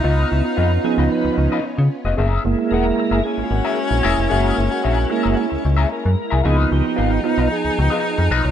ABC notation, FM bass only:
X:1
M:4/4
L:1/16
Q:1/4=112
K:Dbmix
V:1 name="FM bass" clef=bass
D,,2 D,, z F,,2 z D,, z D,, D,, z2 D, z F,,, | G,,,2 G,,, z _F,,,2 z G,,, z A,,, A,,, z2 B,,, F,,, =F,,, | G,,,2 G,,, z B,,,2 z G,,, z D,, D,,2 z G,, z =C,, | D,,2 D,, z A,,,2 z C,, z D,, D,, z2 F,, C,, =C,, |]